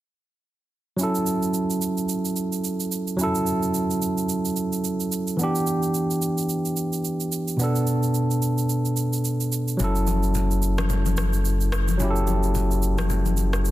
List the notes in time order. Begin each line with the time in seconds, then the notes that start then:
0.97 F#3 C#4, shaker
1.01 E4 A4
1.15 shaker
1.27 shaker
1.42 shaker
1.54 shaker
1.70 shaker
1.82 shaker
1.98 shaker
2.09 shaker
2.25 shaker
2.36 shaker
2.53 shaker
2.64 shaker
2.80 shaker
2.92 shaker
3.07 shaker
3.17 F#3 C#4, shaker
3.21 E4 A4
3.35 shaker
3.47 shaker
3.63 shaker
3.74 shaker
3.91 shaker
4.02 shaker
4.18 shaker
4.29 shaker
4.45 shaker
4.56 shaker
4.73 shaker
4.84 shaker
5.00 shaker
5.12 shaker
5.27 shaker
5.37 E3 B3, shaker
5.41 D4 G4
5.55 shaker
5.67 shaker
5.83 shaker
5.94 shaker
6.11 shaker
6.22 shaker
6.38 shaker
6.49 shaker
6.65 shaker
6.77 shaker
6.93 shaker
7.05 shaker
7.20 shaker
7.32 shaker
7.48 shaker
7.57 B2 B3, shaker
7.61 D4 A4
7.76 shaker
7.87 shaker
8.03 shaker
8.15 shaker
8.31 shaker
8.42 shaker
8.58 shaker
8.69 shaker
8.85 shaker
8.97 shaker
9.13 shaker
9.25 shaker
9.41 shaker
9.52 shaker
9.68 shaker
9.77 F#1 F#3 C#4, low conga, shaker
9.82 E4 A4
9.96 shaker
10.07 high conga, shaker
10.23 shaker
10.35 low conga, shaker
10.51 shaker
10.62 shaker
10.78 cross-stick, high conga, shaker
10.90 low conga, shaker
11.06 high conga, shaker
11.17 cross-stick, high conga, shaker
11.33 shaker
11.45 shaker
11.61 shaker
11.72 cross-stick, shaker
11.88 high conga, shaker
11.97 F#3 C#4, low conga, shaker
12.02 E4 G4
12.11 A4
12.16 shaker
12.27 high conga, shaker
12.43 shaker
12.55 low conga, shaker
12.71 shaker
12.83 shaker
12.98 cross-stick, high conga, shaker
13.10 low conga, shaker
13.26 high conga, shaker
13.37 high conga, shaker
13.53 cross-stick, shaker
13.65 shaker